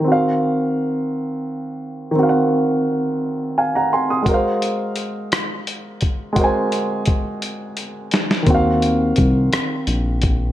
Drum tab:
HH |------------|------------|x-x-x-x-x-x-|x-x-x-x-x-x-|
SD |------------|------------|------r-----|----------oo|
BD |------------|------------|o---------o-|o---o-------|

HH |x-x-x-x-x-x-|
SD |------r-----|
BD |o---o-----o-|